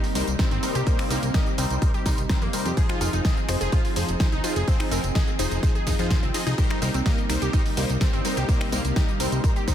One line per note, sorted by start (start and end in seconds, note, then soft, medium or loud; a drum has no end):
0.00 2.73 C3 medium
0.00 2.73 G3 medium
0.00 0.85 A#3 medium
0.00 2.73 D#4 medium
0.00 snare soft
0.00 open hi-hat medium
0.00 sub drop medium
0.04 tambourine soft
0.15 0.23 C2 medium
0.15 0.28 G3 medium
0.15 0.28 D#4 medium
0.15 0.28 A#4 medium
0.15 0.28 C5 medium
0.15 closed hi-hat medium
0.15 open hi-hat loud
0.15 tambourine medium
0.28 0.35 C2 medium
0.28 closed hi-hat medium
0.28 tambourine soft
0.39 0.47 G3 medium
0.39 0.44 C4 medium
0.39 0.47 D#4 medium
0.39 0.47 A#4 medium
0.39 0.47 C5 loud
0.39 kick loud
0.39 snare loud
0.39 closed hi-hat medium
0.39 tambourine soft
0.51 0.59 G1 medium
0.51 0.59 C4 loud
0.51 closed hi-hat soft
0.51 tambourine soft
0.63 0.84 G3 medium
0.63 0.84 D#4 medium
0.63 0.68 D#4 medium
0.63 0.84 A#4 medium
0.63 0.84 C5 medium
0.63 closed hi-hat medium
0.63 open hi-hat loud
0.63 tambourine medium
0.75 0.83 C2 medium
0.75 0.80 G4 loud
0.75 closed hi-hat medium
0.75 tambourine soft
0.87 1.08 G3 loud
0.87 0.95 A#3 loud
0.87 2.75 C4 medium
0.87 1.08 D#4 medium
0.87 1.08 A#4 medium
0.87 1.08 C5 loud
0.87 kick loud
0.87 closed hi-hat medium
0.87 tambourine soft
0.99 1.07 C4 medium
0.99 finger snap medium
0.99 open hi-hat medium
0.99 tambourine soft
1.10 1.19 C2 medium
1.10 1.19 G3 medium
1.10 1.16 A#3 loud
1.10 1.19 D#4 medium
1.10 1.19 A#4 medium
1.10 1.19 C5 medium
1.10 closed hi-hat medium
1.10 open hi-hat loud
1.10 tambourine medium
1.23 1.30 C2 medium
1.23 closed hi-hat soft
1.23 closed hi-hat medium
1.23 tambourine soft
1.34 1.47 G3 medium
1.34 1.47 D#4 medium
1.34 1.40 G4 medium
1.34 1.47 A#4 medium
1.34 1.47 D#5 loud
1.34 kick loud
1.34 snare loud
1.34 closed hi-hat medium
1.34 tambourine soft
1.47 closed hi-hat soft
1.47 tambourine soft
1.58 1.66 C2 medium
1.58 1.79 G3 medium
1.58 1.61 C4 medium
1.58 1.79 D#4 medium
1.58 1.79 A#4 medium
1.58 1.79 C5 medium
1.58 closed hi-hat medium
1.58 open hi-hat loud
1.58 tambourine medium
1.70 1.78 C2 medium
1.70 closed hi-hat medium
1.70 tambourine soft
1.82 1.90 G3 medium
1.82 1.90 D#4 medium
1.82 1.90 A#4 medium
1.82 1.90 C5 loud
1.82 kick loud
1.82 closed hi-hat medium
1.82 tambourine soft
1.94 2.02 G4 medium
1.94 closed hi-hat soft
1.94 tambourine soft
2.06 2.14 C2 loud
2.06 2.19 G3 medium
2.06 2.14 D#4 medium
2.06 2.19 D#4 medium
2.06 2.19 A#4 medium
2.06 2.19 C5 medium
2.06 kick medium
2.06 snare medium
2.06 open hi-hat medium
2.06 open hi-hat loud
2.06 tambourine medium
2.18 2.26 C2 medium
2.18 closed hi-hat soft
2.18 closed hi-hat medium
2.18 tambourine soft
2.29 2.38 G3 medium
2.29 2.33 C4 medium
2.29 2.38 D#4 medium
2.29 2.38 A#4 medium
2.29 2.38 C5 loud
2.29 kick loud
2.29 snare loud
2.29 closed hi-hat medium
2.29 tambourine soft
2.42 2.49 F2 medium
2.42 2.47 A#3 medium
2.42 closed hi-hat soft
2.42 tambourine soft
2.53 2.74 G3 medium
2.53 2.74 D#4 medium
2.53 2.74 A#4 medium
2.53 2.74 C5 medium
2.53 closed hi-hat medium
2.53 open hi-hat loud
2.53 tambourine medium
2.66 2.73 F2 medium
2.66 2.69 G4 medium
2.66 closed hi-hat medium
2.66 tambourine soft
2.77 6.54 F3 medium
2.77 2.98 F3 loud
2.77 6.54 C4 medium
2.77 6.54 D#4 medium
2.77 2.98 D#4 medium
2.77 2.80 G#4 medium
2.77 6.54 G#4 medium
2.77 2.98 G#4 medium
2.77 2.98 C5 loud
2.77 kick loud
2.77 closed hi-hat medium
2.77 tambourine soft
2.89 2.97 F4 loud
2.89 finger snap medium
2.89 closed hi-hat soft
2.89 tambourine soft
3.01 3.09 F1 loud
3.01 3.09 F3 medium
3.01 3.09 D#4 medium
3.01 3.06 F4 medium
3.01 3.09 G#4 medium
3.01 3.09 A#4 medium
3.01 closed hi-hat medium
3.01 open hi-hat loud
3.01 tambourine medium
3.13 3.21 F1 medium
3.13 3.18 D#4 medium
3.13 closed hi-hat medium
3.13 tambourine soft
3.25 3.38 F3 medium
3.25 3.38 D#4 medium
3.25 3.38 G#4 medium
3.25 3.38 D#5 loud
3.25 kick loud
3.25 snare loud
3.25 closed hi-hat medium
3.25 tambourine soft
3.37 closed hi-hat soft
3.37 tambourine soft
3.49 3.57 F1 medium
3.49 3.70 F3 medium
3.49 3.70 D#4 medium
3.49 3.70 G#4 medium
3.49 3.70 C5 medium
3.49 finger snap medium
3.49 closed hi-hat medium
3.49 open hi-hat loud
3.49 tambourine medium
3.61 3.68 F1 medium
3.61 3.66 G#4 loud
3.61 closed hi-hat medium
3.61 tambourine soft
3.72 3.81 F3 medium
3.72 3.81 D#4 medium
3.72 3.80 F4 loud
3.72 3.81 G#4 medium
3.72 3.81 C5 loud
3.72 kick loud
3.72 closed hi-hat medium
3.72 tambourine soft
3.85 snare soft
3.85 open hi-hat medium
3.85 tambourine soft
3.96 4.04 F1 loud
3.96 4.09 F3 medium
3.96 4.09 D#4 medium
3.96 4.09 G#4 medium
3.96 4.09 C5 medium
3.96 closed hi-hat medium
3.96 open hi-hat loud
3.96 tambourine medium
4.08 4.16 F1 medium
4.08 closed hi-hat soft
4.08 tambourine soft
4.20 4.28 F3 medium
4.20 4.25 D#4 medium
4.20 4.28 D#4 medium
4.20 4.28 G#4 medium
4.20 4.28 C5 loud
4.20 kick loud
4.20 snare loud
4.20 closed hi-hat medium
4.20 tambourine soft
4.32 4.40 C2 medium
4.32 4.40 D#4 loud
4.32 closed hi-hat soft
4.32 tambourine soft
4.44 4.65 F3 medium
4.44 4.65 D#4 medium
4.44 4.49 F4 medium
4.44 4.65 G#4 medium
4.44 4.65 C5 medium
4.44 closed hi-hat medium
4.44 open hi-hat loud
4.44 tambourine medium
4.56 4.64 F1 medium
4.56 4.61 G#4 loud
4.56 closed hi-hat medium
4.56 tambourine soft
4.68 4.89 F3 loud
4.68 4.76 C4 loud
4.68 4.89 D#4 medium
4.68 4.89 G#4 medium
4.68 4.89 C5 loud
4.68 kick loud
4.68 closed hi-hat medium
4.68 tambourine soft
4.80 4.88 D#4 medium
4.80 finger snap medium
4.80 open hi-hat medium
4.80 tambourine soft
4.91 5.00 F1 medium
4.91 5.00 F3 medium
4.91 4.97 C4 loud
4.91 5.00 D#4 medium
4.91 5.00 G#4 medium
4.91 5.00 A#4 medium
4.91 closed hi-hat medium
4.91 open hi-hat loud
4.91 tambourine medium
5.04 5.11 F1 medium
5.04 closed hi-hat soft
5.04 tambourine soft
5.15 5.28 F3 medium
5.15 5.28 D#4 medium
5.15 5.21 G#4 medium
5.15 5.28 G#4 medium
5.15 5.28 D#5 loud
5.15 kick loud
5.15 snare loud
5.15 closed hi-hat medium
5.15 closed hi-hat soft
5.15 tambourine soft
5.28 closed hi-hat soft
5.28 tambourine soft
5.39 5.47 F1 medium
5.39 5.60 F3 medium
5.39 5.42 D#4 medium
5.39 5.60 D#4 medium
5.39 5.60 G#4 medium
5.39 5.60 C5 medium
5.39 closed hi-hat medium
5.39 open hi-hat loud
5.39 tambourine medium
5.51 5.59 F1 medium
5.51 closed hi-hat medium
5.51 tambourine soft
5.63 5.71 F3 medium
5.63 5.71 D#4 medium
5.63 5.71 G#4 medium
5.63 5.71 C5 loud
5.63 kick loud
5.63 closed hi-hat medium
5.63 tambourine soft
5.75 5.83 G#4 medium
5.75 closed hi-hat soft
5.75 tambourine soft
5.87 5.95 G1 loud
5.87 5.95 F3 medium
5.87 5.92 D#4 medium
5.87 5.95 D#4 medium
5.87 5.95 G#4 medium
5.87 5.95 D#5 medium
5.87 kick medium
5.87 snare medium
5.87 open hi-hat medium
5.87 open hi-hat loud
5.87 tambourine medium
5.99 6.24 F2 medium
5.99 6.07 F3 medium
5.99 6.07 D#4 medium
5.99 6.07 F4 medium
5.99 6.07 G#4 medium
5.99 6.07 C5 medium
5.99 closed hi-hat soft
5.99 tambourine soft
6.11 6.19 F3 medium
6.11 6.19 D#4 medium
6.11 6.19 F4 medium
6.11 6.19 G#4 medium
6.11 6.19 C5 medium
6.11 kick loud
6.11 snare loud
6.11 closed hi-hat medium
6.11 tambourine soft
6.23 6.30 C2 medium
6.23 6.28 C4 medium
6.23 closed hi-hat soft
6.23 tambourine soft
6.34 6.42 F3 loud
6.34 6.42 D#4 medium
6.34 6.42 G#4 medium
6.34 6.42 D#5 loud
6.34 closed hi-hat medium
6.34 open hi-hat loud
6.34 tambourine medium
6.47 6.54 C2 medium
6.47 6.54 F3 loud
6.47 6.52 D#4 medium
6.47 6.54 D#4 medium
6.47 6.54 G#4 medium
6.47 6.54 D#5 loud
6.47 closed hi-hat medium
6.47 tambourine soft
6.58 9.75 C3 medium
6.58 9.75 G3 medium
6.58 6.79 G3 loud
6.58 9.75 A#3 medium
6.58 9.75 D#4 medium
6.58 6.79 D#4 medium
6.58 6.61 G4 medium
6.58 6.79 A#4 medium
6.58 6.79 C5 loud
6.58 kick loud
6.58 closed hi-hat medium
6.58 tambourine soft
6.70 6.78 D#4 loud
6.70 finger snap medium
6.70 closed hi-hat soft
6.70 tambourine soft
6.82 6.90 C2 loud
6.82 6.90 G3 medium
6.82 6.87 D#4 medium
6.82 6.90 D#4 medium
6.82 6.90 A#4 medium
6.82 6.90 C5 medium
6.82 closed hi-hat medium
6.82 open hi-hat loud
6.82 tambourine medium
6.94 7.02 C2 medium
6.94 6.99 C4 medium
6.94 closed hi-hat soft
6.94 tambourine soft
7.06 7.19 G3 medium
7.06 7.14 A#3 medium
7.06 7.19 D#4 medium
7.06 7.19 A#4 medium
7.06 7.19 D#5 loud
7.06 kick loud
7.06 snare loud
7.06 closed hi-hat medium
7.06 closed hi-hat soft
7.06 tambourine soft
7.18 closed hi-hat soft
7.18 tambourine soft
7.30 7.38 C2 medium
7.30 7.51 G3 medium
7.30 7.51 D#4 medium
7.30 7.51 A#4 medium
7.30 7.51 C5 medium
7.30 finger snap medium
7.30 closed hi-hat medium
7.30 open hi-hat loud
7.30 tambourine medium
7.42 7.49 C2 medium
7.42 7.47 G4 loud
7.42 closed hi-hat medium
7.42 tambourine soft
7.53 7.62 G3 medium
7.53 7.61 D#4 loud
7.53 7.62 D#4 medium
7.53 7.62 A#4 medium
7.53 7.62 C5 loud
7.53 kick loud
7.53 closed hi-hat medium
7.53 tambourine soft
7.66 snare soft
7.66 open hi-hat medium
7.66 tambourine soft
7.77 7.85 C2 loud
7.77 7.90 G3 medium
7.77 7.83 A#3 medium
7.77 7.90 D#4 medium
7.77 7.90 A#4 medium
7.77 7.90 C5 medium
7.77 closed hi-hat medium
7.77 open hi-hat loud
7.77 tambourine medium
7.89 7.97 C2 medium
7.89 closed hi-hat soft
7.89 tambourine soft
8.01 8.09 G3 medium
8.01 8.06 C4 medium
8.01 8.09 D#4 medium
8.01 8.09 A#4 medium
8.01 8.09 C5 medium
8.01 kick loud
8.01 snare loud
8.01 closed hi-hat medium
8.01 tambourine soft
8.13 8.21 G1 medium
8.13 8.21 C4 loud
8.13 closed hi-hat soft
8.13 tambourine soft
8.25 8.46 G3 medium
8.25 8.30 D#4 medium
8.25 8.46 D#4 medium
8.25 8.46 A#4 medium
8.25 8.46 C5 medium
8.25 closed hi-hat medium
8.25 open hi-hat loud
8.25 tambourine medium
8.37 8.45 C2 medium
8.37 8.42 G4 loud
8.37 closed hi-hat medium
8.37 tambourine soft
8.49 8.70 G3 loud
8.49 8.57 A#3 loud
8.49 8.70 D#4 medium
8.49 8.70 A#4 medium
8.49 8.70 C5 loud
8.49 kick loud
8.49 closed hi-hat medium
8.49 tambourine soft
8.61 8.68 C4 medium
8.61 finger snap medium
8.61 open hi-hat medium
8.61 tambourine soft
8.72 8.80 C2 medium
8.72 8.81 G3 medium
8.72 8.78 A#3 loud
8.72 8.81 D#4 medium
8.72 8.81 A#4 medium
8.72 8.81 C5 medium
8.72 closed hi-hat medium
8.72 open hi-hat loud
8.72 tambourine medium
8.85 8.92 C2 medium
8.85 closed hi-hat medium
8.85 closed hi-hat soft
8.85 tambourine soft
8.96 9.09 G3 medium
8.96 9.09 D#4 medium
8.96 9.02 G4 medium
8.96 9.09 A#4 medium
8.96 9.09 D#5 loud
8.96 kick loud
8.96 snare loud
8.96 closed hi-hat medium
8.96 closed hi-hat soft
8.96 tambourine soft
9.09 closed hi-hat soft
9.09 tambourine soft
9.20 9.28 C2 medium
9.20 9.41 G3 medium
9.20 9.23 C4 medium
9.20 9.41 D#4 medium
9.20 9.41 A#4 medium
9.20 9.41 C5 medium
9.20 closed hi-hat medium
9.20 open hi-hat loud
9.20 tambourine medium
9.32 9.40 C2 medium
9.32 closed hi-hat medium
9.32 tambourine soft
9.44 9.52 G3 medium
9.44 9.52 D#4 medium
9.44 9.52 A#4 medium
9.44 9.52 C5 loud
9.44 kick loud
9.44 closed hi-hat medium
9.44 tambourine soft
9.56 9.64 G4 medium
9.56 closed hi-hat soft
9.56 tambourine soft
9.68 9.75 C2 loud
9.68 9.75 G3 medium
9.68 9.75 D#4 medium
9.68 9.75 A#4 medium
9.68 9.75 C5 medium
9.68 kick medium
9.68 snare medium
9.68 open hi-hat medium
9.68 open hi-hat loud
9.68 tambourine medium